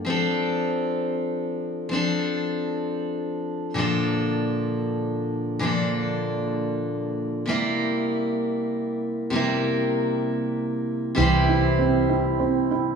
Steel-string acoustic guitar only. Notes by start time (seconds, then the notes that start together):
0.05 F3 C4 D4
0.10 A4
1.89 F3 C4
1.93 D4 A4
3.74 A#2 D3 F3 A#3
3.79 D4 A4
5.59 A#2 D3 F3 A#3
5.64 D4 A4
7.46 C3 G3 A#3 E4
7.51 A#4
9.30 C3 G3 A#3
9.35 E4 A#4
11.15 C3 G3 C4
11.19 E4 C5